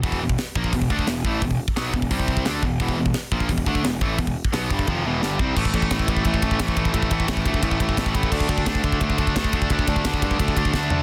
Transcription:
<<
  \new Staff \with { instrumentName = "Distorted electric guitar" } { \clef bass \time 4/4 \key e \phrygian \tempo 4 = 174 <e, b, e>8 <e, b,>8 r8 <ais, f ais>8 <e, b,>8 <d a d'>8 <e, b,>8 <a, e a>8 | <e, b,>8 r8 <b, fis b>8 <e, b,>8 <c g c'>4 <d a d'>8 <e, b,>8 | <e, b, e>8 <e, b,>8 r8 <ais, f ais>8 <e, b,>8 <d a d'>8 <e, b,>8 <a, e a>8 | <e, b,>8 r8 <b, fis b>8 <g, d g>8 <f, c f>8 <e, b, e>8 <g, d g>8 <c g c'>8 |
<a, e a>8 <a, e a>8 <a, e a>8 <a, e a>8 <a, e a>8 <a, e a>8 <a, e a>8 <a, e a>8 | <a, e a>8 <a, e a>8 <a, e a>8 <a, e a>8 <a, e a>8 <a, e a>8 <a, e a>8 <a, e a>8 | <d a d'>8 <d a d'>8 <d a d'>8 <d a d'>8 <d a d'>8 <d a d'>8 <d a d'>8 <d a d'>8 | <d a d'>8 <d a d'>8 <d a d'>8 <d a d'>8 <d a d'>8 <d a d'>8 <d a d'>8 <d a d'>8 | }
  \new Staff \with { instrumentName = "Picked electric bass" } { \clef bass \time 4/4 \key e \phrygian e,,8 e,,8 r8 ais,,8 e,,8 d,8 e,,8 a,,8 | e,,8 r8 b,,8 e,,8 c,4 d,8 e,,8 | e,,8 e,,8 r8 ais,,8 e,,8 d,8 e,,8 a,,8 | e,,8 r8 b,,8 g,,8 f,,8 e,,8 g,,8 c,8 |
a,,8 a,,8 a,,8 a,,8 a,,8 a,,8 a,,4 | a,,8 a,,8 a,,8 d,8 a,,8 a,,8 a,,4 | d,8 d,8 d,8 d,8 d,8 d,8 d,4 | d,8 d,8 d,8 g,8 d,8 d,8 d,4 | }
  \new DrumStaff \with { instrumentName = "Drums" } \drummode { \time 4/4 <hho bd>16 bd8 bd16 <hho sn>8 bd16 bd16 <hho bd>16 bd16 bd16 bd16 <hho sn>8 bd8 | <hho bd>16 bd8 bd16 <hho sn>8 bd16 bd16 <hho bd>16 bd16 bd16 bd16 <hho sn>8 bd8 | <hho bd>16 bd8 bd16 <hho sn>8 bd16 bd16 <hho bd>16 bd16 bd16 bd16 <hho sn>8 bd8 | <hho bd>16 bd8 bd16 <hho sn>8 bd16 bd16 <bd tommh>4 sn8 bd8 |
<cymc bd>16 bd16 <bd cymr>16 bd16 <bd cymr sn>16 bd16 <bd cymr>16 bd16 <bd cymr>16 bd16 <bd cymr>16 bd16 <bd cymr sn>16 bd16 <bd cymr>16 bd16 | <bd cymr>16 bd16 <bd cymr>16 bd16 <bd cymr sn>16 bd16 <bd cymr>16 bd16 <bd cymr>16 bd16 <bd cymr>16 bd16 <bd cymr sn>16 bd16 <bd cymr>16 bd16 | <cymc bd>16 bd16 <bd cymr>16 bd16 <bd cymr sn>16 bd16 <bd cymr>16 bd16 <bd cymr>16 bd16 <bd cymr>16 bd16 <bd cymr sn>16 bd16 <bd cymr>16 bd16 | <bd cymr>16 bd16 <bd cymr>16 bd16 <bd cymr sn>16 bd16 <bd cymr>16 bd16 <bd cymr>16 bd16 <bd cymr>16 bd16 <bd sn>8 tomfh8 | }
>>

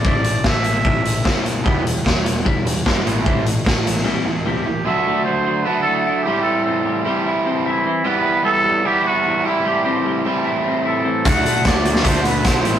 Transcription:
<<
  \new Staff \with { instrumentName = "Trumpet" } { \time 4/4 \key a \dorian \tempo 4 = 150 d''4 e''2~ e''8 r8 | r1 | r2. g'4 | e''4 c''4 b'8 a'4 g'8 |
a'8 a'4 r4. e'4 | b'4 a'4 g'8 fis'4 e'8 | g'8 g'4 r4. a'4 | fis''4 d''4 c''8 b'8 c''4 | }
  \new Staff \with { instrumentName = "Clean electric guitar" } { \time 4/4 \key a \dorian <g c' e'>8 r4. <g c' e'>8 r8 <g c' e'>8 r8 | <g b e'>8 r4. <g b e'>8 r8 <g b e'>8 r8 | <g c' e'>8 r4. <g c' e'>8 r8 <g c' e'>8 r8 | fis8 a8 fis8 fis8 e'8 a8 e'8 g8 |
g8 c'8 g8 g8 e'8 c'8 e'8 c'8 | g8 b8 g8 g8 e'8 b8 e'8 g8 | g8 c'8 g8 g8 e'8 c'8 e'8 c'8 | fis8 a8 fis8 fis8 e'8 a8 e'8 g8 | }
  \new Staff \with { instrumentName = "Overdriven electric guitar" } { \clef bass \time 4/4 \key a \dorian r1 | <e g b>8 <e g>8 <e g>8 <e g>8 <e g>8 <e g>8 <e g>8 <a, e a>8 | <a, e a>8 <a, e>8 <a, e>8 <a, e>8 <a, e>8 <a, e>8 <a, e>8 <a, e>8 | <d a d' fis'>2 <d a d' fis'>4. <a, e a c' e'>8~ |
<a, e a c' e'>4. <a, e a c' e'>2 r8 | <e g b e'>2 <e g b e'>4. <a, e a c' e'>8~ | <a, e a c' e'>4. <a, e a c' e'>2 r8 | <d a d' fis'>2 <d a d' fis'>4. <a, e a c' e'>8 | }
  \new Staff \with { instrumentName = "Picked electric bass" } { \clef bass \time 4/4 \key a \dorian a,,4 a,,4 a,,4 fis,,4 | e,,4 e,,4 e,,4 g,,8 a,,8~ | a,,4 a,,4 r2 | r1 |
r1 | r1 | r1 | d,8 r8 d,4 d,4 b,,8 a,,8 | }
  \new DrumStaff \with { instrumentName = "Drums" } \drummode { \time 4/4 bd8 hh8 <bd sn>8 hh8 bd8 hh8 <bd sn>8 hh8 | bd8 hh8 <bd sn>8 hh8 bd8 hh8 <bd sn>8 hh8 | bd8 hh8 <bd sn>8 hh16 sn16 r4 r4 | r4 r4 r4 r4 |
r4 r4 r4 r4 | r4 r4 r4 r4 | r4 r4 r4 r4 | <hh bd>8 hh8 <hh bd sn>8 hh16 sn16 <hh bd>8 hh8 <hh bd sn>8 hh8 | }
>>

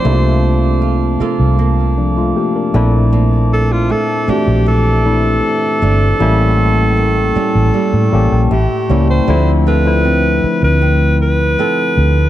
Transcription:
<<
  \new Staff \with { instrumentName = "Glass harmonica" } { \time 4/4 \key a \phrygian \tempo 4 = 78 << { <a'' d'''>1~ | <a'' d'''>1 | <a'' cis'''>1 | \key d \dorian r1 | } \\ { <a' f''>2.~ <a' f''>8 <c'' e''>8~ | <c'' e''>1 | <bes g''>1 | r1 | } >> }
  \new Staff \with { instrumentName = "Alto saxophone" } { \time 4/4 \key a \phrygian c''4 r2. | r8 a'16 f'16 a'8 g'8 a'2~ | a'2. g'8. c''16~ | \key d \dorian c''8 b'4~ b'16 b'8. b'4. | }
  \new Staff \with { instrumentName = "Tine electric piano" } { \time 4/4 \key a \phrygian << { r2 r8 <f d'>16 <a f'>16 <bes g'>16 <d' bes'>8 r16 | r1 | r2 r8 a''16 g''16 e''8 cis''8 | \key d \dorian r1 | } \\ { <a bes d' e' f'>4.~ <a bes d' e' f'>16 r4. r16 <a c' d' e'>8~ | <a c' d' e'>4~ <a c' d' e'>16 r16 <a c' d' fis' g'>4 <a c' d' e'>4~ <a c' d' e'>16 r16 | <g bes cis' e'>4.~ <g bes cis' e'>16 r8. <g bes cis' g'>8 r8 <g bes cis' e'>8 | <f a c' e'>8. <f a c' e'>4.~ <f a c' e'>16 r4. | } >> }
  \new Staff \with { instrumentName = "Nylon-string guitar" } { \time 4/4 \key a \phrygian c4 f'8 <bes f' a'>8 bes4. bes,8 | bes,4 a8 <e a d'>8 e4. <e a d'>8 | a,4 bes8 <g bes cis'>8 g4 a,8 <g bes cis'>8 | \key d \dorian d8 <c' f' a'>8 c'4 c'4 <c' f' a'>4 | }
  \new Staff \with { instrumentName = "Fingered electric bass" } { \clef bass \time 4/4 \key a \phrygian c,4. r16 c,4~ c,16 r8 bes,,8~ | bes,,4. r16 bes,,4~ bes,,16 r8 g,,8 | a,,4. r16 a,,16 r16 a,16 a,,16 bes,,16 a,,16 r16 cis,8 | \key d \dorian d,4. r16 d,4~ d,16 r8 d,8 | }
>>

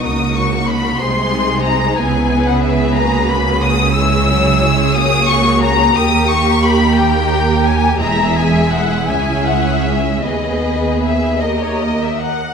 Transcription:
<<
  \new Staff \with { instrumentName = "Violin section" } { \time 6/8 \key cis \dorian \tempo 4. = 59 dis'''8 cis'''8 b''8 bis''4 ais''8 | gis''8. fis''16 e''8 ais''8 b''8 dis'''8 | \key dis \phrygian e'''4. dis'''8 cis'''8 ais''8 | dis'''8 cis'''8 b''8 g''4 gis''8 |
ais''8 gis''8 fis''8 gis''8 fis''8 e''8 | dis''4 e''8 dis''16 cis''16 dis''16 e''16 fis''8 | }
  \new Staff \with { instrumentName = "Violin section" } { \time 6/8 \key cis \dorian << { ais'4. bis'4. | b'2. | \key dis \phrygian cis''2. | ais'2. |
e''4. e''4. | b'4. dis''4~ dis''16 r16 | } \\ { fis'4. gis'4. | gis'2. | gis'2. | g'4. g'4. |
gis'4. gis'4. | gis'4. ais'4~ ais'16 r16 | } >> }
  \new Staff \with { instrumentName = "Viola section" } { \time 6/8 \key cis \dorian << { dis'4. dis'4. | e'4. fis'4. | \key dis \phrygian e'4. fis'4. | g'2. |
e'2. | gis'4. g'4~ g'16 r16 | } \\ { ais4. gis4. | b4. ais4. | gis8 fis8 gis8 ais4. | ais2. |
gis4. cis'4. | b4. ais4~ ais16 r16 | } >> }
  \new Staff \with { instrumentName = "Cello section" } { \clef bass \time 6/8 \key cis \dorian cis4. bis,4. | cis2.~ | \key dis \phrygian cis2. | dis,2. |
e,4. cis,4. | dis,2~ dis,8. r16 | }
  \new Staff \with { instrumentName = "Double bass section" } { \clef bass \time 6/8 \key cis \dorian cis,4. bis,,4. | cis,2.~ | \key dis \phrygian cis,2. | dis,2. |
e,,4. cis,4. | dis,2~ dis,8. r16 | }
>>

